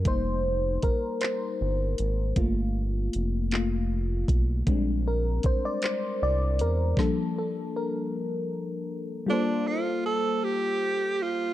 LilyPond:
<<
  \new Staff \with { instrumentName = "Tenor saxophone" } { \time 6/8 \key g \minor \tempo 4. = 52 r2. | r2. | r2. | r2. |
d'8 f'8 a'8 g'4 f'8 | }
  \new Staff \with { instrumentName = "FM electric piano" } { \time 6/8 \key g \minor c''4 bes'8 c''4. | r2. | r8 bes'8 c''16 d''16 c''8 d''8 bes'8 | a'8 a'8 bes'8 r4. |
<g bes f' a' c''>2. | }
  \new Staff \with { instrumentName = "FM electric piano" } { \time 6/8 \key g \minor <g bes ees'>2. | <a bes f'>8 r4 <a bes f'>8 r4 | <g aes c' d'>2. | <f g bes d'>2. |
r2. | }
  \new Staff \with { instrumentName = "Analog synth bass" } { \clef bass \time 6/8 \key g \minor f,,4 g,,8 r8 g,,8 aes,,8 | g,,4 f,,4. b,,8 | bes,,4 c,8 r8 c,8 e,8 | r2. |
r2. | }
  \new DrumStaff \with { instrumentName = "Drums" } \drummode { \time 6/8 <hh bd>4 <hh bd>8 <hc hh>4 hh8 | <hh bd>4 hh8 <hc hh>4 <hh bd>8 | <hh bd>4 <hh bd>8 <hc hh>4 hh8 | <bd sn>4. r4. |
r4. r4. | }
>>